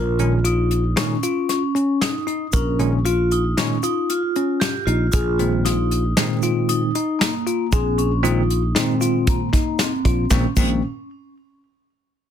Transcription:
Already playing: A#1 F4 A#4
0.19 A#2 D#3 G#3 C#4, closed hi-hat
0.45 D#4 F4, closed hi-hat
0.71 closed hi-hat
0.96 A#2 D#3 G#3 C#4 D#4, snare, closed hi-hat
1.23 F4, closed hi-hat, shaker
1.49 C#4, snare, closed hi-hat
1.75 C#4, closed hi-hat
2.01 D#4, snare, closed hi-hat
2.27 D#4, closed hi-hat
2.53 A#1 C#4 A#4, kick, closed hi-hat, shaker
2.79 A#2 D#3 G#3 C#4, closed hi-hat
3.05 F4, closed hi-hat
3.31 D#4, closed hi-hat
3.57 A#2 D#3 G#3 C#4 D#4, snare, closed hi-hat
3.83 D#4 F4, closed hi-hat, shaker
4.10 F4, closed hi-hat
4.36 C#4, closed hi-hat
4.60 G4, snare, closed hi-hat
4.86 A#1 D#4 F4, closed hi-hat
5.12 A#1 F4 G#4, kick, closed hi-hat, shaker
5.39 A#2 D#3 G#3 C4, closed hi-hat
5.65 D#4 F4, snare, closed hi-hat
5.91 closed hi-hat
6.17 A#2 D#3 G#3 C4 D#4, snare, closed hi-hat
6.42 F4, closed hi-hat, shaker
6.69 D#4, closed hi-hat
6.95 D#4, closed hi-hat
7.19 A#3, snare, closed hi-hat
7.47 F4, closed hi-hat
7.72 A#1 C4 G#4, kick, closed hi-hat, shaker
7.98 C#4, closed hi-hat
8.23 A#2 D#3 G#3 C4 D#4 F4, closed hi-hat, shaker
8.50 closed hi-hat
8.75 A#2 D#3 G#3 C4 D#4, snare, closed hi-hat
9.01 F4, closed hi-hat, shaker
9.27 A#3, kick, closed hi-hat
9.53 D#4, kick, snare, closed hi-hat
9.79 C4, snare, closed hi-hat, shaker
10.05 A#1 F4, kick, closed hi-hat
10.30 A#1 A#2 D#3 G#3 A#3 C4 C#4, kick, snare, shaker
10.56 A#1 A#2 D#3 G#3 A#3 C4 C#4, kick, crash, shaker

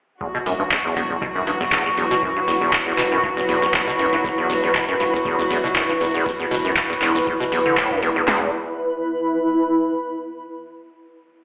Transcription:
0.21 E2 F#3 E4 F#4, kick
0.35 B2
0.41 B4
0.46 E1 F#2, open hi-hat
0.60 G2
0.64 B5
0.71 E2, kick, clap
0.85 E2
0.97 E1 E2, open hi-hat
1.10 E2, kick
1.22 B2, kick
1.35 E1 F#2
1.47 E1 G2, open hi-hat
1.61 E2
1.72 E2, kick, clap
1.86 E2
1.97 E1 E2, open hi-hat
2.11 B2
2.23 F#2, kick
2.36 G2
2.48 E1 E2, open hi-hat
2.61 E2
2.73 E2, kick, clap
2.87 E2
2.98 E1 B2, clap, open hi-hat
3.12 F#2
3.23 G2, kick
3.37 E1 E2
3.49 E1 E2, open hi-hat
3.62 E2
3.74 E2, kick, clap
3.87 B2, kick
3.99 E1 F#2, open hi-hat
4.13 G2
4.24 E2, kick
4.38 E2
4.50 E1 E2, open hi-hat
4.63 E2
4.75 B2, kick, clap
4.88 F#2
5.00 E1 G2, open hi-hat
5.14 E2, kick
5.25 E2, kick
5.39 E1 E2
5.50 E1 E2, open hi-hat
5.64 B2
5.76 F#2, kick, clap
5.89 G2
6.01 E1 E2, open hi-hat
6.14 E2
6.26 E2, kick
6.40 E2
6.51 E1 B2, open hi-hat
6.65 F#2
6.76 G2, kick, clap
6.90 E2
7.02 E1 E2, clap, open hi-hat
7.15 E2
7.27 E2, kick
7.40 D1 B2
7.52 D1 E2, open hi-hat
7.66 D3
7.77 A2, kick, clap
7.91 F#2, kick
8.02 E1 E2, open hi-hat
8.16 E2
8.28 E1 E2 E4, snare, clap
8.36 B4
8.44 B5

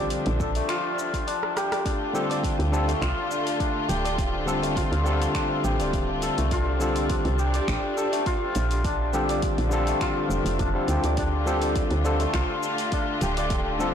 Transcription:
Already playing: A#1 D3 F3 G3 A3 C4 D4 F4 G4 A4 D5
0.10 open hi-hat, shaker
0.26 A#1, open hi-hat
0.40 A4, kick, shaker
0.55 A3, open hi-hat, shaker
0.69 F4, finger snap, open hi-hat, shaker
0.99 shaker
1.14 kick, open hi-hat, shaker
1.27 D4, open hi-hat, shaker
1.43 cross-stick
1.57 G4, cross-stick, open hi-hat, shaker
1.72 D5, cross-stick, open hi-hat, shaker
1.85 D3 A3 D4 F4, kick, open hi-hat, shaker
2.13 D3 G3 C4 F4 G4 A4, shaker
2.30 D5, open hi-hat, shaker
2.44 kick, open hi-hat, shaker
2.59 D2, open hi-hat
2.72 D3 G3 C4 F4 A4, shaker
2.87 A3, open hi-hat, shaker
3.01 C2 F4, finger snap, kick, open hi-hat, shaker
3.31 shaker
3.47 open hi-hat, shaker
3.60 D4, kick, open hi-hat, shaker
3.88 D1 G4, open hi-hat, shaker
4.04 D5, open hi-hat, shaker
4.17 C4, kick, open hi-hat, shaker
4.46 D3 G3 C4 F4 A4, shaker
4.62 A3, open hi-hat, shaker
4.76 F4, kick, open hi-hat, shaker
4.92 D2, open hi-hat
5.03 D3 G3 C4 F4, shaker
5.07 A4
5.22 open hi-hat, shaker
5.35 D4, finger snap, kick, open hi-hat, shaker
5.64 A1 G4, shaker
5.80 D1 D5, open hi-hat, shaker
5.93 kick, open hi-hat, shaker
6.22 A4, open hi-hat, shaker
6.38 C2 A3, open hi-hat, shaker
6.51 G3 D4 F4, kick, open hi-hat, shaker
6.80 D3 G3 C4 F4 A4, shaker
6.96 open hi-hat, shaker
7.10 D4, kick, open hi-hat, shaker
7.25 C2, open hi-hat
7.39 G4, shaker
7.54 D5, open hi-hat, shaker
7.68 A1, finger snap, kick, open hi-hat, shaker
7.97 A4, shaker
8.12 A3, open hi-hat, shaker
8.26 F4, kick, open hi-hat, shaker
8.55 A#1, open hi-hat, shaker
8.71 open hi-hat, shaker
8.84 F3 D4, kick, open hi-hat, shaker
9.13 D3 G3 C4 F4 G4 A4, shaker
9.29 D5, open hi-hat, shaker
9.42 kick, open hi-hat, shaker
9.58 A#1, open hi-hat
9.69 D3 G3 C4 F4 A4, shaker
9.87 A3, open hi-hat, shaker
10.01 F4, finger snap, kick, open hi-hat, shaker
10.29 F1, shaker
10.45 F1, open hi-hat, shaker
10.59 F1 D4, kick, open hi-hat, shaker
10.73 D3 G3 C4 F4 A4
10.88 D2 G4, open hi-hat, shaker
11.04 D2 D5, open hi-hat, shaker
11.17 D3 A3 D4 F4, kick, open hi-hat, shaker
11.45 D3 G3 C4 F4 G4 A4, shaker
11.62 D5, open hi-hat, shaker
11.76 kick, open hi-hat, shaker
11.91 D2, open hi-hat
12.04 D3 G3 C4 F4 A4, shaker
12.20 A3, open hi-hat, shaker
12.34 C2 F4, finger snap, kick, open hi-hat, shaker
12.63 shaker
12.78 open hi-hat, shaker
12.92 D4, kick, open hi-hat, shaker
13.21 D1 G4, open hi-hat, shaker
13.37 D5, open hi-hat, shaker
13.50 kick, open hi-hat, shaker
13.79 D3 G3 C4 F4 A4, shaker

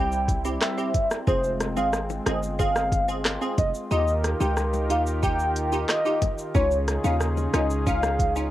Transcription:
Already playing: C2 G3 C4 E4 G4 G5
0.12 shaker
0.28 kick, closed hi-hat, shaker
0.45 C4 E4 G4, shaker
0.61 E5, cross-stick, clap, shaker
0.78 C4 E4 G4, shaker
0.94 kick, closed hi-hat, shaker
1.11 cross-stick, shaker
1.27 F1 G#3 C4 F4 G#4 C5, kick, shaker
1.44 shaker
1.60 cross-stick, closed hi-hat, shaker
1.76 G#1 C4 F4 G#4 F5, high bongo, shaker
1.93 cross-stick, shaker
2.10 high bongo, shaker
2.26 G1 C4 F4 G#4 D#5, cross-stick, closed hi-hat, shaker
2.43 shaker
2.59 C4 F4 G#4 F5, kick, shaker
2.76 cross-stick, shaker
2.92 kick, closed hi-hat, shaker
3.08 C4 F4 G#4, shaker
3.25 cross-stick, clap, shaker
3.41 C4 F4 G#4, shaker
3.58 F1 D#5, kick, closed hi-hat, high bongo, low bongo, shaker
3.75 shaker
3.91 D#2 D#3 D#4 F4 G4 A#4 D#5, shaker
4.08 shaker
4.24 cross-stick, closed hi-hat, shaker
4.40 C#2 D#4 F4 G4 G5, high bongo, shaker
4.57 cross-stick, shaker
4.74 high bongo, shaker
4.90 D#2 D#4 F4 G4 F5, closed hi-hat, shaker
5.07 shaker
5.23 D#4 F4 G4 G5, kick, shaker
5.39 shaker
5.56 closed hi-hat, shaker
5.72 D#4 F4 G4, shaker
5.89 D#5, cross-stick, clap, shaker
6.05 D#4 F4 G4, shaker
6.22 kick, closed hi-hat, high bongo, low bongo, shaker
6.38 shaker
6.55 C#2 C#3 C#4 D#4 F4 G#4 C#5, kick, shaker
6.71 shaker
6.88 cross-stick, closed hi-hat, shaker
7.04 D#2 C#4 D#4 F4 F5, high bongo, shaker
7.21 cross-stick, shaker
7.37 high bongo, shaker
7.54 C#2 C#4 D#4 F4 D#5, cross-stick, closed hi-hat, shaker
7.70 shaker
7.86 C#4 D#4 F4 F5, kick, shaker
8.03 cross-stick, shaker
8.19 kick, closed hi-hat, shaker
8.36 C#4 D#4 F4, shaker

